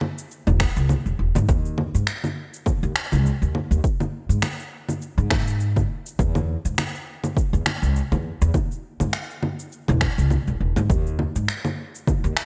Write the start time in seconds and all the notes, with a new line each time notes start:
0.01 low conga
0.18 cabasa
0.31 cabasa
0.47 E1, low conga, cabasa
0.60 finger snap, kick
0.77 C#2, cabasa
0.89 low conga, cabasa
1.06 E1, cabasa
1.19 E1
1.35 G#2, low conga, cabasa
1.49 D#2, kick, cabasa
1.65 cabasa
1.78 low conga
1.95 G#2, cabasa
2.07 finger snap, cabasa
2.24 low conga, cabasa
2.54 cabasa
2.66 kick, low conga, cabasa
2.83 D#2, cabasa
2.96 finger snap
3.12 C#2, low conga, cabasa
3.26 cabasa
3.42 D#2, cabasa
3.55 low conga
3.71 D#2, cabasa
3.84 kick, cabasa
4.00 low conga, cabasa
4.29 G#2, cabasa
4.42 finger snap, low conga, cabasa
4.60 cabasa
4.89 low conga, cabasa
5.02 cabasa
5.18 G#2, cabasa
5.30 finger snap, kick, low conga
5.48 cabasa
5.60 cabasa
5.76 kick, low conga, cabasa
6.06 cabasa
6.19 E2, kick, cabasa
6.35 low conga, cabasa
6.65 G#2, cabasa
6.78 finger snap, low conga, cabasa
6.95 cabasa
7.24 low conga, cabasa
7.37 kick, cabasa
7.53 E2, cabasa
7.66 finger snap, low conga
7.82 C#2, cabasa
7.96 cabasa
8.12 E2, low conga, cabasa
8.42 E2, cabasa
8.54 kick, low conga, cabasa
8.71 cabasa
9.00 G#2, low conga, cabasa
9.13 finger snap, cabasa
9.30 cabasa
9.43 low conga
9.59 cabasa
9.72 cabasa
9.88 E1, low conga, cabasa
10.01 finger snap, kick
10.18 C#2, cabasa
10.30 low conga, cabasa
10.47 E1, cabasa
10.60 E1
10.76 G#2, low conga, cabasa
10.90 D#2, kick, cabasa
11.07 cabasa
11.19 low conga
11.36 G#2, cabasa
11.48 finger snap, cabasa
11.65 low conga, cabasa
11.95 cabasa
12.07 kick, low conga, cabasa
12.24 D#2, cabasa
12.37 finger snap